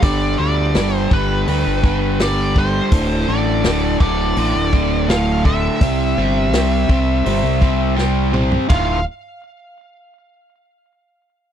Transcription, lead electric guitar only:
0.03 D5
0.39 D5
0.94 C5
1.13 B4
2.22 D5
2.58 C5
3.28 D5
4.01 D5
5.10 F5
5.46 E5
8.69 F5

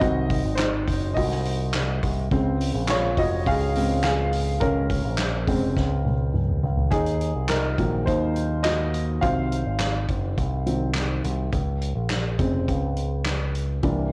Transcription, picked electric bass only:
0.02 C2
0.45 G#1
0.87 F#1
1.17 C2
2.03 C2
2.31 C#2
2.74 A#1
3.17 F1
3.47 C#2
4.61 C#2
5.04 A#1
5.48 F1
5.77 C#2
6.63 C#2
6.91 D#2
7.35 C2
7.78 A#1
8.07 D#2
9.22 C2
9.66 G#1
10.09 F#1
10.38 C2
11.24 C2
11.53 C#2
11.96 A#1
12.39 F1
12.68 C#2
13.83 C2

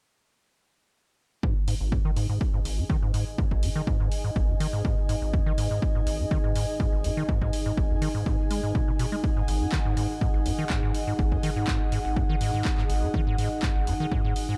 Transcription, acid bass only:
1.43 G#2
1.68 G#2
1.81 G#1
1.92 G#2
2.05 D#3
2.16 G#2
2.29 G#2
2.54 G#2
2.65 G#1
2.78 G#2
2.90 D#3
3.03 G#2
3.14 G#2
3.38 G#2
3.51 G#1
3.63 G#2
3.76 D#3
3.87 G#2
4.00 G#2
4.24 G#2
4.36 G#1
4.49 G#2
4.60 D#3
4.73 G#2
4.85 G#2
5.09 G#2
5.22 G#1
5.34 G#2
5.46 D#3
5.58 G#2
5.71 G#2
5.95 G#2
6.07 G#1
6.20 G#2
6.31 D#3
6.44 G#2
6.55 G#2
6.80 G#2
6.93 G#1
7.04 G#2
7.17 D#3
7.29 G#2
7.41 G#2
7.66 G#2
7.77 G#1
7.90 G#2
8.02 D#3
8.15 G#2
8.26 G#2
8.51 G#3
8.63 G#2
8.75 B2
8.88 B2
8.99 B2
9.12 G#3
9.37 G#2
9.48 G#1
9.61 G#2
9.72 D#3
9.85 G#2
9.97 G#2
10.21 G#2
10.34 G#1
10.46 G#2
10.59 D#3
10.70 G#2
10.83 G#2
11.07 G#2
11.19 G#1
11.32 G#2
11.43 D#3
11.56 G#2
11.68 G#2
11.92 G#2
12.05 G#1
12.16 G#2
12.29 D#3
12.41 G#2
12.54 G#2
12.78 G#2
12.90 G#1
13.03 G#2
13.14 D#3
13.27 G#2
13.38 G#2
13.63 G#2
13.76 G#1
13.87 G#2
14.00 D#3
14.12 G#2
14.25 G#2
14.49 G#2

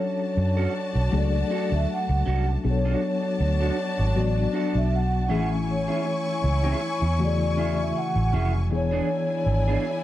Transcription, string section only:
Already playing: D4 F#4 A5
2.65 D4 F#4 A5
5.29 E4 G#5 C#6
8.72 D4 E4 G#5

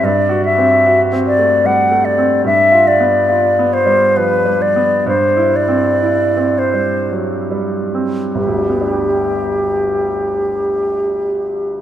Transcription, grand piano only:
0.03 G2
0.29 F#4
0.58 C4
0.86 F#4
1.12 C4
1.39 A3
1.64 G3
1.91 A3
2.18 C4
2.44 G2
2.72 F4
3.00 B3
3.29 F4
3.59 B3
3.86 G3
4.17 F3
4.45 G3
4.76 B3
5.06 G2
5.37 E4
5.68 C4
6.02 E4
6.37 C4
6.74 G3
7.11 F#3
7.51 G3
7.94 C4
8.35 G1
8.47 D2
8.58 G3
8.69 B3
8.81 D4
8.91 G4

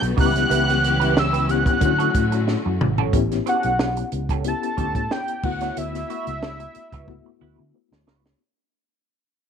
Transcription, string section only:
Already playing: D3 G3 A3 B3 F#4
0.18 E3 C#4 G4
1.82 D3 F#3 A3 F#4

